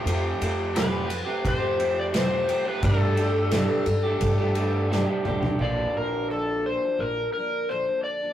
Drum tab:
RD |x-x-x-x-x-x-x-x-|x-x-x-x-x-x-----|----------------|
SD |----o-------o---|----o-------o---|----------------|
T2 |----------------|--------------o-|----------------|
FT |----------------|---------------o|----------------|
BD |--------o-------|o-------o-------|----------------|